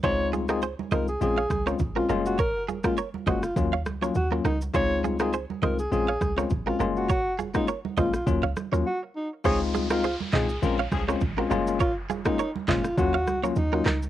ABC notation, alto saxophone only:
X:1
M:4/4
L:1/16
Q:"Swing 16ths" 1/4=102
K:Db
V:1 name="Alto saxophone"
d2 z A z2 B A A3 z2 F z G | B2 z F z2 G F z4 G z E z | d2 z A z2 B A A3 z2 F z G | G2 z E z2 F F z4 G z E z |
A z2 F2 z A2 z8 | F z2 E2 z F2 G3 z E3 z |]